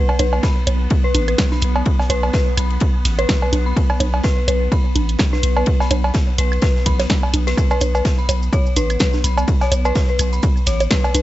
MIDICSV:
0, 0, Header, 1, 5, 480
1, 0, Start_track
1, 0, Tempo, 476190
1, 1875, Time_signature, 4, 2, 24, 8
1, 11310, End_track
2, 0, Start_track
2, 0, Title_t, "Synth bell"
2, 0, Program_c, 0, 98
2, 196, Note_on_c, 0, 71, 77
2, 264, Note_off_c, 0, 71, 0
2, 435, Note_on_c, 0, 83, 83
2, 462, Note_off_c, 0, 83, 0
2, 1050, Note_on_c, 0, 71, 103
2, 1086, Note_off_c, 0, 71, 0
2, 1291, Note_on_c, 0, 71, 77
2, 1343, Note_off_c, 0, 71, 0
2, 1531, Note_on_c, 0, 83, 76
2, 1552, Note_off_c, 0, 83, 0
2, 2115, Note_on_c, 0, 71, 104
2, 2160, Note_off_c, 0, 71, 0
2, 2355, Note_on_c, 0, 71, 83
2, 2424, Note_off_c, 0, 71, 0
2, 2595, Note_on_c, 0, 83, 78
2, 2622, Note_off_c, 0, 83, 0
2, 3211, Note_on_c, 0, 71, 100
2, 3246, Note_off_c, 0, 71, 0
2, 3452, Note_on_c, 0, 71, 80
2, 3504, Note_off_c, 0, 71, 0
2, 3691, Note_on_c, 0, 83, 80
2, 3712, Note_off_c, 0, 83, 0
2, 4275, Note_on_c, 0, 71, 101
2, 4321, Note_off_c, 0, 71, 0
2, 4515, Note_on_c, 0, 71, 79
2, 4583, Note_off_c, 0, 71, 0
2, 4756, Note_on_c, 0, 83, 84
2, 4783, Note_off_c, 0, 83, 0
2, 5372, Note_on_c, 0, 71, 98
2, 5406, Note_off_c, 0, 71, 0
2, 5612, Note_on_c, 0, 71, 75
2, 5664, Note_off_c, 0, 71, 0
2, 5852, Note_on_c, 0, 83, 83
2, 5872, Note_off_c, 0, 83, 0
2, 6436, Note_on_c, 0, 71, 104
2, 6481, Note_off_c, 0, 71, 0
2, 6675, Note_on_c, 0, 71, 85
2, 6743, Note_off_c, 0, 71, 0
2, 6915, Note_on_c, 0, 83, 71
2, 6942, Note_off_c, 0, 83, 0
2, 7531, Note_on_c, 0, 71, 103
2, 7566, Note_off_c, 0, 71, 0
2, 7771, Note_on_c, 0, 71, 102
2, 7806, Note_off_c, 0, 71, 0
2, 8012, Note_on_c, 0, 71, 78
2, 8064, Note_off_c, 0, 71, 0
2, 8251, Note_on_c, 0, 83, 78
2, 8272, Note_off_c, 0, 83, 0
2, 8595, Note_on_c, 0, 73, 85
2, 8622, Note_off_c, 0, 73, 0
2, 8836, Note_on_c, 0, 71, 97
2, 8881, Note_off_c, 0, 71, 0
2, 9076, Note_on_c, 0, 71, 80
2, 9144, Note_off_c, 0, 71, 0
2, 9315, Note_on_c, 0, 83, 80
2, 9342, Note_off_c, 0, 83, 0
2, 9693, Note_on_c, 0, 73, 79
2, 9713, Note_off_c, 0, 73, 0
2, 9932, Note_on_c, 0, 71, 100
2, 9966, Note_off_c, 0, 71, 0
2, 10172, Note_on_c, 0, 71, 77
2, 10224, Note_off_c, 0, 71, 0
2, 10411, Note_on_c, 0, 83, 72
2, 10432, Note_off_c, 0, 83, 0
2, 10755, Note_on_c, 0, 73, 74
2, 10782, Note_off_c, 0, 73, 0
2, 10994, Note_on_c, 0, 71, 100
2, 11040, Note_off_c, 0, 71, 0
2, 11235, Note_on_c, 0, 71, 79
2, 11304, Note_off_c, 0, 71, 0
2, 11310, End_track
3, 0, Start_track
3, 0, Title_t, "Synth drone"
3, 0, Program_c, 1, 95
3, 0, Note_on_c, 1, 59, 86
3, 7620, Note_off_c, 1, 59, 0
3, 7632, Note_on_c, 1, 59, 80
3, 11310, Note_off_c, 1, 59, 0
3, 11310, End_track
4, 0, Start_track
4, 0, Title_t, "Sub bass"
4, 0, Program_c, 2, 38
4, 195, Note_on_c, 2, 35, 105
4, 403, Note_off_c, 2, 35, 0
4, 675, Note_on_c, 2, 35, 98
4, 883, Note_off_c, 2, 35, 0
4, 1154, Note_on_c, 2, 33, 99
4, 1363, Note_off_c, 2, 33, 0
4, 1634, Note_on_c, 2, 35, 91
4, 1843, Note_off_c, 2, 35, 0
4, 2113, Note_on_c, 2, 35, 98
4, 2322, Note_off_c, 2, 35, 0
4, 2594, Note_on_c, 2, 35, 100
4, 2803, Note_off_c, 2, 35, 0
4, 3074, Note_on_c, 2, 33, 96
4, 3283, Note_off_c, 2, 33, 0
4, 3554, Note_on_c, 2, 35, 93
4, 3763, Note_off_c, 2, 35, 0
4, 4034, Note_on_c, 2, 35, 104
4, 4243, Note_off_c, 2, 35, 0
4, 4514, Note_on_c, 2, 35, 96
4, 4723, Note_off_c, 2, 35, 0
4, 4994, Note_on_c, 2, 33, 98
4, 5203, Note_off_c, 2, 33, 0
4, 5475, Note_on_c, 2, 35, 93
4, 5683, Note_off_c, 2, 35, 0
4, 5954, Note_on_c, 2, 35, 104
4, 6163, Note_off_c, 2, 35, 0
4, 6434, Note_on_c, 2, 35, 95
4, 6643, Note_off_c, 2, 35, 0
4, 6915, Note_on_c, 2, 35, 91
4, 7123, Note_off_c, 2, 35, 0
4, 7395, Note_on_c, 2, 35, 85
4, 7603, Note_off_c, 2, 35, 0
4, 7874, Note_on_c, 2, 35, 104
4, 8083, Note_off_c, 2, 35, 0
4, 8354, Note_on_c, 2, 35, 96
4, 8563, Note_off_c, 2, 35, 0
4, 8834, Note_on_c, 2, 33, 95
4, 9043, Note_off_c, 2, 33, 0
4, 9314, Note_on_c, 2, 35, 94
4, 9523, Note_off_c, 2, 35, 0
4, 9793, Note_on_c, 2, 35, 99
4, 10002, Note_off_c, 2, 35, 0
4, 10273, Note_on_c, 2, 35, 94
4, 10482, Note_off_c, 2, 35, 0
4, 10754, Note_on_c, 2, 33, 98
4, 10963, Note_off_c, 2, 33, 0
4, 11234, Note_on_c, 2, 35, 95
4, 11310, Note_off_c, 2, 35, 0
4, 11310, End_track
5, 0, Start_track
5, 0, Title_t, "Drums"
5, 91, Note_on_c, 9, 56, 98
5, 191, Note_off_c, 9, 56, 0
5, 193, Note_on_c, 9, 51, 69
5, 194, Note_on_c, 9, 42, 94
5, 195, Note_on_c, 9, 60, 64
5, 195, Note_on_c, 9, 63, 54
5, 293, Note_off_c, 9, 51, 0
5, 295, Note_off_c, 9, 42, 0
5, 296, Note_off_c, 9, 60, 0
5, 296, Note_off_c, 9, 63, 0
5, 330, Note_on_c, 9, 56, 80
5, 431, Note_off_c, 9, 56, 0
5, 434, Note_on_c, 9, 51, 88
5, 435, Note_on_c, 9, 36, 112
5, 435, Note_on_c, 9, 38, 115
5, 535, Note_off_c, 9, 36, 0
5, 535, Note_off_c, 9, 38, 0
5, 535, Note_off_c, 9, 51, 0
5, 674, Note_on_c, 9, 51, 66
5, 674, Note_on_c, 9, 60, 60
5, 675, Note_on_c, 9, 42, 96
5, 775, Note_off_c, 9, 51, 0
5, 775, Note_off_c, 9, 60, 0
5, 776, Note_off_c, 9, 42, 0
5, 910, Note_on_c, 9, 51, 94
5, 915, Note_on_c, 9, 36, 123
5, 1011, Note_off_c, 9, 51, 0
5, 1015, Note_off_c, 9, 36, 0
5, 1154, Note_on_c, 9, 63, 78
5, 1155, Note_on_c, 9, 42, 92
5, 1155, Note_on_c, 9, 51, 71
5, 1255, Note_off_c, 9, 42, 0
5, 1255, Note_off_c, 9, 51, 0
5, 1255, Note_off_c, 9, 63, 0
5, 1290, Note_on_c, 9, 75, 66
5, 1292, Note_on_c, 9, 42, 37
5, 1391, Note_off_c, 9, 75, 0
5, 1392, Note_off_c, 9, 42, 0
5, 1393, Note_on_c, 9, 51, 83
5, 1394, Note_on_c, 9, 38, 124
5, 1395, Note_off_c, 9, 38, 0
5, 1395, Note_on_c, 9, 36, 120
5, 1395, Note_on_c, 9, 38, 99
5, 1494, Note_off_c, 9, 51, 0
5, 1495, Note_off_c, 9, 36, 0
5, 1496, Note_off_c, 9, 38, 0
5, 1523, Note_on_c, 9, 38, 51
5, 1530, Note_on_c, 9, 63, 59
5, 1624, Note_off_c, 9, 38, 0
5, 1627, Note_on_c, 9, 51, 62
5, 1631, Note_off_c, 9, 63, 0
5, 1635, Note_on_c, 9, 42, 97
5, 1728, Note_off_c, 9, 51, 0
5, 1736, Note_off_c, 9, 42, 0
5, 1770, Note_on_c, 9, 56, 92
5, 1871, Note_off_c, 9, 56, 0
5, 1871, Note_on_c, 9, 51, 94
5, 1875, Note_on_c, 9, 36, 117
5, 1971, Note_off_c, 9, 51, 0
5, 1976, Note_off_c, 9, 36, 0
5, 2011, Note_on_c, 9, 56, 93
5, 2016, Note_on_c, 9, 38, 48
5, 2111, Note_off_c, 9, 56, 0
5, 2114, Note_on_c, 9, 60, 66
5, 2116, Note_on_c, 9, 42, 95
5, 2116, Note_on_c, 9, 51, 78
5, 2117, Note_off_c, 9, 38, 0
5, 2215, Note_off_c, 9, 60, 0
5, 2216, Note_off_c, 9, 42, 0
5, 2217, Note_off_c, 9, 51, 0
5, 2251, Note_on_c, 9, 56, 80
5, 2351, Note_off_c, 9, 56, 0
5, 2352, Note_on_c, 9, 38, 115
5, 2355, Note_on_c, 9, 36, 112
5, 2360, Note_on_c, 9, 51, 85
5, 2453, Note_off_c, 9, 38, 0
5, 2456, Note_off_c, 9, 36, 0
5, 2461, Note_off_c, 9, 51, 0
5, 2594, Note_on_c, 9, 75, 70
5, 2595, Note_on_c, 9, 51, 68
5, 2596, Note_on_c, 9, 42, 95
5, 2695, Note_off_c, 9, 75, 0
5, 2696, Note_off_c, 9, 51, 0
5, 2697, Note_off_c, 9, 42, 0
5, 2725, Note_on_c, 9, 51, 43
5, 2825, Note_off_c, 9, 51, 0
5, 2825, Note_on_c, 9, 51, 84
5, 2835, Note_on_c, 9, 36, 122
5, 2836, Note_on_c, 9, 42, 35
5, 2926, Note_off_c, 9, 51, 0
5, 2936, Note_off_c, 9, 36, 0
5, 2937, Note_off_c, 9, 42, 0
5, 3072, Note_on_c, 9, 38, 49
5, 3074, Note_on_c, 9, 51, 71
5, 3076, Note_on_c, 9, 42, 93
5, 3173, Note_off_c, 9, 38, 0
5, 3174, Note_off_c, 9, 51, 0
5, 3177, Note_off_c, 9, 42, 0
5, 3212, Note_on_c, 9, 51, 45
5, 3212, Note_on_c, 9, 60, 65
5, 3213, Note_on_c, 9, 42, 37
5, 3312, Note_off_c, 9, 60, 0
5, 3313, Note_off_c, 9, 42, 0
5, 3313, Note_off_c, 9, 51, 0
5, 3315, Note_on_c, 9, 36, 111
5, 3316, Note_on_c, 9, 38, 103
5, 3317, Note_on_c, 9, 51, 92
5, 3321, Note_off_c, 9, 38, 0
5, 3321, Note_on_c, 9, 38, 127
5, 3416, Note_off_c, 9, 36, 0
5, 3417, Note_off_c, 9, 51, 0
5, 3422, Note_off_c, 9, 38, 0
5, 3450, Note_on_c, 9, 56, 90
5, 3551, Note_off_c, 9, 56, 0
5, 3554, Note_on_c, 9, 63, 77
5, 3556, Note_on_c, 9, 42, 93
5, 3560, Note_on_c, 9, 51, 64
5, 3655, Note_off_c, 9, 63, 0
5, 3657, Note_off_c, 9, 42, 0
5, 3660, Note_off_c, 9, 51, 0
5, 3795, Note_on_c, 9, 36, 120
5, 3798, Note_on_c, 9, 51, 94
5, 3896, Note_off_c, 9, 36, 0
5, 3898, Note_off_c, 9, 51, 0
5, 3929, Note_on_c, 9, 56, 98
5, 3929, Note_on_c, 9, 75, 75
5, 4030, Note_off_c, 9, 56, 0
5, 4030, Note_off_c, 9, 75, 0
5, 4031, Note_on_c, 9, 51, 66
5, 4033, Note_on_c, 9, 60, 69
5, 4033, Note_on_c, 9, 63, 52
5, 4035, Note_on_c, 9, 42, 92
5, 4132, Note_off_c, 9, 51, 0
5, 4134, Note_off_c, 9, 60, 0
5, 4134, Note_off_c, 9, 63, 0
5, 4136, Note_off_c, 9, 42, 0
5, 4170, Note_on_c, 9, 56, 82
5, 4269, Note_on_c, 9, 38, 121
5, 4271, Note_off_c, 9, 56, 0
5, 4274, Note_on_c, 9, 51, 80
5, 4275, Note_on_c, 9, 36, 107
5, 4369, Note_off_c, 9, 38, 0
5, 4374, Note_off_c, 9, 51, 0
5, 4376, Note_off_c, 9, 36, 0
5, 4513, Note_on_c, 9, 60, 63
5, 4516, Note_on_c, 9, 42, 91
5, 4516, Note_on_c, 9, 51, 63
5, 4614, Note_off_c, 9, 60, 0
5, 4616, Note_off_c, 9, 42, 0
5, 4617, Note_off_c, 9, 51, 0
5, 4755, Note_on_c, 9, 36, 118
5, 4756, Note_on_c, 9, 51, 90
5, 4856, Note_off_c, 9, 36, 0
5, 4857, Note_off_c, 9, 51, 0
5, 4994, Note_on_c, 9, 63, 74
5, 4995, Note_on_c, 9, 42, 88
5, 4996, Note_on_c, 9, 51, 64
5, 5095, Note_off_c, 9, 63, 0
5, 5096, Note_off_c, 9, 42, 0
5, 5097, Note_off_c, 9, 51, 0
5, 5131, Note_on_c, 9, 42, 37
5, 5228, Note_on_c, 9, 38, 127
5, 5232, Note_off_c, 9, 42, 0
5, 5235, Note_off_c, 9, 38, 0
5, 5235, Note_on_c, 9, 36, 117
5, 5235, Note_on_c, 9, 38, 102
5, 5235, Note_on_c, 9, 51, 88
5, 5235, Note_on_c, 9, 75, 71
5, 5335, Note_off_c, 9, 51, 0
5, 5336, Note_off_c, 9, 36, 0
5, 5336, Note_off_c, 9, 38, 0
5, 5336, Note_off_c, 9, 75, 0
5, 5371, Note_on_c, 9, 38, 52
5, 5371, Note_on_c, 9, 63, 53
5, 5471, Note_off_c, 9, 63, 0
5, 5472, Note_off_c, 9, 38, 0
5, 5475, Note_on_c, 9, 42, 90
5, 5476, Note_on_c, 9, 51, 72
5, 5576, Note_off_c, 9, 42, 0
5, 5577, Note_off_c, 9, 51, 0
5, 5610, Note_on_c, 9, 56, 97
5, 5706, Note_on_c, 9, 51, 95
5, 5711, Note_off_c, 9, 56, 0
5, 5715, Note_on_c, 9, 36, 117
5, 5807, Note_off_c, 9, 51, 0
5, 5816, Note_off_c, 9, 36, 0
5, 5850, Note_on_c, 9, 56, 100
5, 5852, Note_on_c, 9, 38, 49
5, 5951, Note_off_c, 9, 56, 0
5, 5953, Note_off_c, 9, 38, 0
5, 5954, Note_on_c, 9, 42, 90
5, 5955, Note_on_c, 9, 60, 73
5, 5955, Note_on_c, 9, 63, 54
5, 5958, Note_on_c, 9, 51, 66
5, 6055, Note_off_c, 9, 42, 0
5, 6056, Note_off_c, 9, 60, 0
5, 6056, Note_off_c, 9, 63, 0
5, 6059, Note_off_c, 9, 51, 0
5, 6091, Note_on_c, 9, 56, 85
5, 6187, Note_on_c, 9, 38, 113
5, 6192, Note_off_c, 9, 56, 0
5, 6193, Note_on_c, 9, 51, 88
5, 6195, Note_on_c, 9, 36, 107
5, 6288, Note_off_c, 9, 38, 0
5, 6294, Note_off_c, 9, 51, 0
5, 6296, Note_off_c, 9, 36, 0
5, 6435, Note_on_c, 9, 42, 92
5, 6437, Note_on_c, 9, 51, 69
5, 6535, Note_off_c, 9, 42, 0
5, 6538, Note_off_c, 9, 51, 0
5, 6571, Note_on_c, 9, 75, 68
5, 6580, Note_on_c, 9, 51, 48
5, 6669, Note_off_c, 9, 51, 0
5, 6669, Note_on_c, 9, 51, 83
5, 6671, Note_off_c, 9, 75, 0
5, 6675, Note_on_c, 9, 36, 120
5, 6676, Note_on_c, 9, 42, 34
5, 6679, Note_on_c, 9, 38, 117
5, 6770, Note_off_c, 9, 51, 0
5, 6776, Note_off_c, 9, 36, 0
5, 6777, Note_off_c, 9, 42, 0
5, 6780, Note_off_c, 9, 38, 0
5, 6817, Note_on_c, 9, 38, 46
5, 6915, Note_on_c, 9, 36, 61
5, 6915, Note_on_c, 9, 42, 91
5, 6917, Note_off_c, 9, 38, 0
5, 6919, Note_on_c, 9, 51, 66
5, 7016, Note_off_c, 9, 36, 0
5, 7016, Note_off_c, 9, 42, 0
5, 7020, Note_off_c, 9, 51, 0
5, 7050, Note_on_c, 9, 38, 105
5, 7051, Note_on_c, 9, 60, 72
5, 7052, Note_on_c, 9, 42, 38
5, 7052, Note_on_c, 9, 51, 86
5, 7151, Note_off_c, 9, 38, 0
5, 7152, Note_off_c, 9, 60, 0
5, 7153, Note_off_c, 9, 42, 0
5, 7153, Note_off_c, 9, 51, 0
5, 7153, Note_on_c, 9, 38, 116
5, 7153, Note_on_c, 9, 51, 91
5, 7155, Note_off_c, 9, 38, 0
5, 7155, Note_on_c, 9, 36, 114
5, 7155, Note_on_c, 9, 38, 106
5, 7253, Note_off_c, 9, 51, 0
5, 7256, Note_off_c, 9, 36, 0
5, 7256, Note_off_c, 9, 38, 0
5, 7290, Note_on_c, 9, 56, 93
5, 7391, Note_off_c, 9, 56, 0
5, 7393, Note_on_c, 9, 51, 65
5, 7395, Note_on_c, 9, 42, 96
5, 7396, Note_on_c, 9, 63, 78
5, 7494, Note_off_c, 9, 51, 0
5, 7496, Note_off_c, 9, 42, 0
5, 7497, Note_off_c, 9, 63, 0
5, 7531, Note_on_c, 9, 38, 108
5, 7535, Note_on_c, 9, 51, 87
5, 7631, Note_off_c, 9, 38, 0
5, 7635, Note_on_c, 9, 36, 122
5, 7635, Note_on_c, 9, 75, 66
5, 7636, Note_off_c, 9, 51, 0
5, 7637, Note_on_c, 9, 70, 52
5, 7639, Note_on_c, 9, 51, 91
5, 7736, Note_off_c, 9, 36, 0
5, 7736, Note_off_c, 9, 75, 0
5, 7738, Note_off_c, 9, 70, 0
5, 7740, Note_off_c, 9, 51, 0
5, 7765, Note_on_c, 9, 70, 29
5, 7772, Note_on_c, 9, 56, 104
5, 7866, Note_off_c, 9, 70, 0
5, 7872, Note_off_c, 9, 56, 0
5, 7872, Note_on_c, 9, 70, 97
5, 7875, Note_on_c, 9, 42, 94
5, 7875, Note_on_c, 9, 60, 71
5, 7875, Note_on_c, 9, 63, 54
5, 7880, Note_on_c, 9, 51, 70
5, 7973, Note_off_c, 9, 70, 0
5, 7976, Note_off_c, 9, 42, 0
5, 7976, Note_off_c, 9, 60, 0
5, 7976, Note_off_c, 9, 63, 0
5, 7981, Note_off_c, 9, 51, 0
5, 8010, Note_on_c, 9, 70, 42
5, 8011, Note_on_c, 9, 56, 88
5, 8111, Note_off_c, 9, 70, 0
5, 8112, Note_off_c, 9, 56, 0
5, 8114, Note_on_c, 9, 38, 115
5, 8114, Note_on_c, 9, 51, 91
5, 8115, Note_on_c, 9, 36, 109
5, 8116, Note_on_c, 9, 70, 50
5, 8215, Note_off_c, 9, 38, 0
5, 8215, Note_off_c, 9, 51, 0
5, 8216, Note_off_c, 9, 36, 0
5, 8217, Note_off_c, 9, 70, 0
5, 8251, Note_on_c, 9, 70, 27
5, 8352, Note_off_c, 9, 70, 0
5, 8355, Note_on_c, 9, 42, 95
5, 8355, Note_on_c, 9, 60, 65
5, 8358, Note_on_c, 9, 51, 61
5, 8359, Note_on_c, 9, 70, 101
5, 8456, Note_off_c, 9, 42, 0
5, 8456, Note_off_c, 9, 60, 0
5, 8459, Note_off_c, 9, 51, 0
5, 8460, Note_off_c, 9, 70, 0
5, 8493, Note_on_c, 9, 70, 39
5, 8594, Note_off_c, 9, 70, 0
5, 8595, Note_on_c, 9, 36, 126
5, 8596, Note_on_c, 9, 70, 54
5, 8597, Note_on_c, 9, 51, 84
5, 8695, Note_off_c, 9, 36, 0
5, 8696, Note_off_c, 9, 70, 0
5, 8698, Note_off_c, 9, 51, 0
5, 8732, Note_on_c, 9, 70, 28
5, 8833, Note_off_c, 9, 70, 0
5, 8834, Note_on_c, 9, 42, 96
5, 8834, Note_on_c, 9, 51, 68
5, 8834, Note_on_c, 9, 70, 106
5, 8836, Note_on_c, 9, 63, 81
5, 8934, Note_off_c, 9, 70, 0
5, 8935, Note_off_c, 9, 42, 0
5, 8935, Note_off_c, 9, 51, 0
5, 8936, Note_off_c, 9, 63, 0
5, 8971, Note_on_c, 9, 42, 39
5, 8973, Note_on_c, 9, 75, 65
5, 8974, Note_on_c, 9, 70, 35
5, 9067, Note_off_c, 9, 70, 0
5, 9067, Note_on_c, 9, 70, 48
5, 9069, Note_on_c, 9, 51, 82
5, 9072, Note_off_c, 9, 42, 0
5, 9072, Note_on_c, 9, 38, 119
5, 9074, Note_off_c, 9, 75, 0
5, 9074, Note_on_c, 9, 36, 121
5, 9075, Note_off_c, 9, 38, 0
5, 9075, Note_on_c, 9, 38, 112
5, 9168, Note_off_c, 9, 70, 0
5, 9170, Note_off_c, 9, 51, 0
5, 9175, Note_off_c, 9, 36, 0
5, 9176, Note_off_c, 9, 38, 0
5, 9204, Note_on_c, 9, 70, 27
5, 9209, Note_on_c, 9, 38, 55
5, 9212, Note_on_c, 9, 63, 59
5, 9305, Note_off_c, 9, 70, 0
5, 9309, Note_off_c, 9, 38, 0
5, 9313, Note_off_c, 9, 63, 0
5, 9314, Note_on_c, 9, 51, 62
5, 9315, Note_on_c, 9, 42, 96
5, 9320, Note_on_c, 9, 70, 93
5, 9415, Note_off_c, 9, 51, 0
5, 9416, Note_off_c, 9, 42, 0
5, 9420, Note_off_c, 9, 70, 0
5, 9451, Note_on_c, 9, 56, 106
5, 9451, Note_on_c, 9, 70, 44
5, 9551, Note_off_c, 9, 56, 0
5, 9552, Note_off_c, 9, 70, 0
5, 9552, Note_on_c, 9, 51, 89
5, 9554, Note_on_c, 9, 36, 127
5, 9557, Note_on_c, 9, 70, 51
5, 9653, Note_off_c, 9, 51, 0
5, 9655, Note_off_c, 9, 36, 0
5, 9658, Note_off_c, 9, 70, 0
5, 9681, Note_on_c, 9, 38, 49
5, 9690, Note_on_c, 9, 56, 101
5, 9691, Note_on_c, 9, 70, 30
5, 9782, Note_off_c, 9, 38, 0
5, 9791, Note_off_c, 9, 56, 0
5, 9792, Note_off_c, 9, 70, 0
5, 9794, Note_on_c, 9, 42, 97
5, 9794, Note_on_c, 9, 60, 69
5, 9798, Note_on_c, 9, 51, 67
5, 9798, Note_on_c, 9, 70, 94
5, 9895, Note_off_c, 9, 42, 0
5, 9895, Note_off_c, 9, 60, 0
5, 9899, Note_off_c, 9, 51, 0
5, 9899, Note_off_c, 9, 70, 0
5, 9929, Note_on_c, 9, 70, 42
5, 9931, Note_on_c, 9, 56, 89
5, 10030, Note_off_c, 9, 70, 0
5, 10032, Note_off_c, 9, 56, 0
5, 10032, Note_on_c, 9, 70, 54
5, 10033, Note_on_c, 9, 51, 88
5, 10034, Note_on_c, 9, 36, 116
5, 10034, Note_on_c, 9, 38, 124
5, 10133, Note_off_c, 9, 70, 0
5, 10134, Note_off_c, 9, 51, 0
5, 10135, Note_off_c, 9, 36, 0
5, 10135, Note_off_c, 9, 38, 0
5, 10168, Note_on_c, 9, 70, 28
5, 10269, Note_off_c, 9, 70, 0
5, 10271, Note_on_c, 9, 70, 104
5, 10272, Note_on_c, 9, 51, 77
5, 10273, Note_on_c, 9, 42, 96
5, 10275, Note_on_c, 9, 75, 64
5, 10372, Note_off_c, 9, 70, 0
5, 10373, Note_off_c, 9, 51, 0
5, 10374, Note_off_c, 9, 42, 0
5, 10376, Note_off_c, 9, 75, 0
5, 10409, Note_on_c, 9, 51, 45
5, 10414, Note_on_c, 9, 70, 38
5, 10510, Note_off_c, 9, 51, 0
5, 10510, Note_off_c, 9, 70, 0
5, 10510, Note_on_c, 9, 70, 55
5, 10512, Note_on_c, 9, 51, 86
5, 10514, Note_on_c, 9, 36, 127
5, 10514, Note_on_c, 9, 42, 37
5, 10610, Note_off_c, 9, 70, 0
5, 10613, Note_off_c, 9, 51, 0
5, 10615, Note_off_c, 9, 36, 0
5, 10615, Note_off_c, 9, 42, 0
5, 10653, Note_on_c, 9, 70, 28
5, 10748, Note_on_c, 9, 51, 69
5, 10750, Note_on_c, 9, 38, 54
5, 10753, Note_off_c, 9, 70, 0
5, 10753, Note_on_c, 9, 70, 94
5, 10754, Note_on_c, 9, 42, 98
5, 10848, Note_off_c, 9, 51, 0
5, 10850, Note_off_c, 9, 38, 0
5, 10854, Note_off_c, 9, 42, 0
5, 10854, Note_off_c, 9, 70, 0
5, 10890, Note_on_c, 9, 42, 41
5, 10890, Note_on_c, 9, 51, 47
5, 10892, Note_on_c, 9, 60, 68
5, 10900, Note_on_c, 9, 70, 39
5, 10991, Note_off_c, 9, 42, 0
5, 10991, Note_off_c, 9, 51, 0
5, 10992, Note_off_c, 9, 60, 0
5, 10993, Note_on_c, 9, 38, 111
5, 10993, Note_on_c, 9, 51, 99
5, 10994, Note_on_c, 9, 36, 126
5, 10995, Note_off_c, 9, 38, 0
5, 10995, Note_on_c, 9, 38, 121
5, 11000, Note_off_c, 9, 70, 0
5, 11001, Note_on_c, 9, 70, 58
5, 11094, Note_off_c, 9, 51, 0
5, 11095, Note_off_c, 9, 36, 0
5, 11096, Note_off_c, 9, 38, 0
5, 11102, Note_off_c, 9, 70, 0
5, 11132, Note_on_c, 9, 56, 105
5, 11132, Note_on_c, 9, 70, 26
5, 11233, Note_off_c, 9, 56, 0
5, 11233, Note_off_c, 9, 70, 0
5, 11234, Note_on_c, 9, 42, 100
5, 11235, Note_on_c, 9, 63, 82
5, 11236, Note_on_c, 9, 70, 97
5, 11243, Note_on_c, 9, 51, 67
5, 11310, Note_off_c, 9, 42, 0
5, 11310, Note_off_c, 9, 51, 0
5, 11310, Note_off_c, 9, 63, 0
5, 11310, Note_off_c, 9, 70, 0
5, 11310, End_track
0, 0, End_of_file